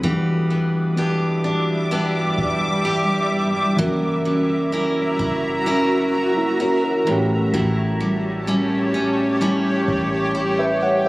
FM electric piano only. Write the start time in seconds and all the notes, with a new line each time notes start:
0.01 E3 F#3 B3
0.06 G3 D4 F#4
3.77 E3 F#3 A#3
3.81 C#4 F#4
6.37 A#3 E4
6.61 C#4 F#4
6.84 E4 A#4
7.05 E3 A3 B3
7.09 C#4 G4
10.59 B4 E5
10.83 C#5 F#5